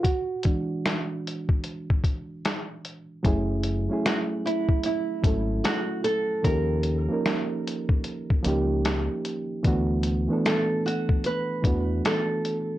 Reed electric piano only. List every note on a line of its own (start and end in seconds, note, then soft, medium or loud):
0.03 2.40 F#4 loud
0.45 1.61 E3 medium
0.45 1.61 G#3 soft
0.45 1.61 D4 medium
3.23 3.72 F#3 medium
3.23 3.73 A3 medium
3.23 3.73 C#4 medium
3.23 3.74 E4 medium
3.27 3.74 G#4 medium
3.88 4.94 F#3 medium
3.88 4.95 A3 medium
3.88 4.96 C#4 medium
3.88 4.96 E4 medium
3.93 4.97 G#4 medium
5.22 6.20 F#3 medium
5.22 6.21 A3 medium
5.22 6.21 C#4 medium
5.22 6.22 E4 medium
5.27 6.23 A4 medium
6.42 6.92 F3 medium
6.42 6.93 A#3 medium
6.42 6.93 C#4 medium
6.42 6.94 D#4 medium
6.47 6.94 G4 medium
7.09 8.15 F3 medium
7.09 8.15 A#3 medium
7.09 8.16 C#4 medium
7.09 8.16 D#4 medium
7.13 8.17 A#4 medium
8.43 9.40 F3 medium
8.43 9.41 A#3 medium
8.43 9.42 C#4 medium
8.43 9.42 D#4 medium
8.47 9.43 G4 medium
9.63 10.12 E3 medium
9.63 10.13 A3 medium
9.63 10.13 B3 medium
9.63 10.14 D4 medium
9.68 10.14 F#4 loud
10.28 11.34 E3 medium
10.28 11.35 A3 medium
10.28 11.35 B3 medium
10.28 11.36 D4 medium
10.33 11.37 A4 medium
11.62 12.60 E3 medium
11.62 12.61 A3 medium
11.62 12.62 B3 medium
11.62 12.62 D4 medium
11.67 12.63 F#4 medium